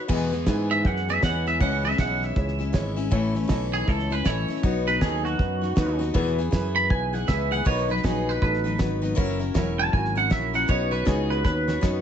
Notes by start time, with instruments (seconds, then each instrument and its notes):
0.08 steel-string acoustic guitar E2 B2 E3 G#3 B3 G#4, fingered electric bass E2, grand piano E4 G#4 B4, kick, snare, crash
0.21 snare
0.31 steel-string acoustic guitar E3 G#3 B3 G#4, snare
0.46 fingered electric bass G#2, steel-string acoustic guitar E3 G#3 B3 G#4, grand piano E4 G#4 B4, kick, snare, hi-hat pedal
0.70 clean electric guitar E5, snare
0.84 fingered electric bass F#2, grand piano E4 G#4 B4, clean electric guitar F#5, kick, snare
0.97 snare
1.08 steel-string acoustic guitar E3 G#3 B3 G#4, clean electric guitar E5, snare
1.21 fingered electric bass E2, steel-string acoustic guitar E3 G#3 B3 G#4, grand piano E4 G#4 C#5, clean electric guitar F#5, kick, snare, hi-hat pedal
1.46 steel-string acoustic guitar E3 G#3 B3 G#4, clean electric guitar E5, snare
1.60 fingered electric bass C#2, steel-string acoustic guitar C#3 E3 G#3 C#4 E4, grand piano E4 G#4 C#5, clean electric guitar F#5, kick, snare
1.83 steel-string acoustic guitar G#3 C#4 E4, clean electric guitar E5, snare
1.91 snare
1.98 fingered electric bass B1, steel-string acoustic guitar E3 G#3 C#4 E4, grand piano E4 G#4 E5, clean electric guitar F#5, kick, snare, hi-hat pedal
2.22 clean electric guitar E5, snare
2.36 fingered electric bass C#2, grand piano E4 G#4 C#5, kick, snare
2.48 snare
2.58 steel-string acoustic guitar G#3 C#4 E4, snare
2.73 fingered electric bass G#1, steel-string acoustic guitar E3 G#3 C#4 E4, grand piano E4 G#4 C#5, kick, snare, hi-hat pedal
2.96 steel-string acoustic guitar G#3 C#4 E4, snare
3.11 fingered electric bass A1, steel-string acoustic guitar A2 E3 A3 C#4 E4, grand piano E4 A4 C#5, kick, snare
3.35 steel-string acoustic guitar A3 C#4 E4, snare
3.43 snare
3.48 fingered electric bass B1, steel-string acoustic guitar E3 A3 C#4 E4, grand piano E4 A4 D#5, kick, snare, hi-hat pedal
3.73 clean electric guitar G#4, snare
3.86 fingered electric bass C#2, grand piano E4 A4 C#5, clean electric guitar A4, kick, snare
3.99 snare
4.10 steel-string acoustic guitar A3 C#4 E4, clean electric guitar B4, snare
4.24 fingered electric bass A1, steel-string acoustic guitar E3 A3 C#4 E4, grand piano E4 A4 D#5, clean electric guitar C#5, kick, snare, hi-hat pedal
4.48 steel-string acoustic guitar A3 C#4 E4, snare
4.56 snare
4.62 fingered electric bass B1, steel-string acoustic guitar B2 F#3 B3 D#4 F#4, grand piano D#4 F#4 B4, kick, snare
4.87 steel-string acoustic guitar B3 D#4 F#4, clean electric guitar B4, snare
4.99 fingered electric bass D#2, steel-string acoustic guitar F#3 B3 D#4 F#4, grand piano D#4 F#4 A4, clean electric guitar G#4, kick, snare, hi-hat pedal
5.25 clean electric guitar F#4, snare
5.38 fingered electric bass F#2, grand piano D#4 F#4 B4, kick, snare
5.61 steel-string acoustic guitar B3 D#4 F#4, snare
5.76 fingered electric bass D#2, steel-string acoustic guitar F#3 B3 D#4 F#4, grand piano D#4 F#4 B4, kick, snare, hi-hat pedal
5.99 steel-string acoustic guitar B3 D#4 F#4, snare
6.14 steel-string acoustic guitar E2 B2 E3 B3 E4 G#4, fingered electric bass E2, grand piano E4 G#4 B4, kick, snare
6.27 snare
6.38 steel-string acoustic guitar E3 B3 E4 G#4, snare
6.51 fingered electric bass F#2, steel-string acoustic guitar E3 B3 E4 G#4, grand piano E4 G#4 B4, kick, snare, hi-hat pedal
6.76 clean electric guitar B5, snare
6.90 fingered electric bass B1, grand piano E4 G#4 B4, clean electric guitar G#5, kick, snare
7.13 steel-string acoustic guitar E3 B3 E4 G#4, clean electric guitar F#5, snare
7.27 fingered electric bass C#2, steel-string acoustic guitar E3 B3 E4 G#4, grand piano E4 G#4 B4, clean electric guitar E5, kick, snare, hi-hat pedal
7.51 steel-string acoustic guitar E3 B3 E4 G#4, clean electric guitar F#5, snare
7.65 fingered electric bass B1, steel-string acoustic guitar B2 D#3 F#3 B3 D#4 B4, grand piano D#4 F#4 B4, clean electric guitar C#5, kick, snare
7.78 snare
7.88 steel-string acoustic guitar F#3 B3 D#4 B4, clean electric guitar B4, snare
7.97 snare
8.03 fingered electric bass A#1, steel-string acoustic guitar F#3 B3 D#4 B4, grand piano D#4 F#4 B4, clean electric guitar G#4, kick, snare, hi-hat pedal
8.29 clean electric guitar B4, snare
8.42 fingered electric bass A1, grand piano D#4 F#4 A4, clean electric guitar B4, kick, snare
8.54 snare
8.64 steel-string acoustic guitar F#3 B3 D#4 B4, snare
8.78 fingered electric bass G#1, steel-string acoustic guitar F#3 B3 D#4 B4, grand piano D#4 F#4 B4, kick, snare, hi-hat pedal
9.02 steel-string acoustic guitar F#3 B3 D#4 B4, snare
9.15 fingered electric bass F#1, steel-string acoustic guitar F#3 C#4 E4 A#4, grand piano E4 F#4 A#4, kick, snare
9.29 snare
9.39 steel-string acoustic guitar C#4 E4 A#4, snare
9.54 fingered electric bass E1, steel-string acoustic guitar F#3 C#4 E4 A#4, grand piano E4 F#4 A#4, kick, snare, hi-hat pedal
9.79 clean electric guitar A5, snare
9.93 fingered electric bass G#1, grand piano E4 F#4 A#4, clean electric guitar G#5, kick, snare
10.05 snare
10.15 steel-string acoustic guitar C#4 E4 A#4, clean electric guitar F#5, snare
10.30 fingered electric bass A#1, steel-string acoustic guitar F#3 C#4 E4 A#4, grand piano E4 F#4 A#4, clean electric guitar E5, kick, snare, hi-hat pedal
10.53 steel-string acoustic guitar C#4 E4 A#4, clean electric guitar F#5, snare
10.68 fingered electric bass B1, steel-string acoustic guitar B3 D#4 F#4 C#5, grand piano C#4 D#4 B4, clean electric guitar C#5, kick, snare
10.91 steel-string acoustic guitar D#4 F#4 C#5, clean electric guitar B4, snare
11.05 fingered electric bass C#2, steel-string acoustic guitar B3 D#4 F#4 C#5, grand piano C#4 D#4 G#4, clean electric guitar G#4, kick, snare, hi-hat pedal
11.30 clean electric guitar B4, snare
11.44 fingered electric bass D#2, grand piano C#4 D#4 B4, clean electric guitar B4, kick, snare
11.68 steel-string acoustic guitar D#4 F#4 C#5, snare
11.81 fingered electric bass F#2, steel-string acoustic guitar B3 D#4 F#4 C#5, grand piano C#4 D#4 B4, kick, snare, hi-hat pedal